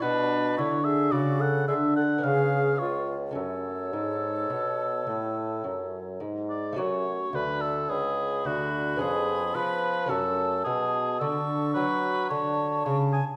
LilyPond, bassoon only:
\new Staff \with { instrumentName = "Bassoon" } { \clef bass \time 3/4 \key fis \minor \tempo 4 = 54 b,8 d8 cis8 d8 cis8 cis,8 | fis,8 gis,8 b,8 a,8 fis,8 gis,8 | fis,8 d,8 cis,8 d,8 eis,8 eis8 | fis,8 b,8 d8 fis8 d8 cis8 | }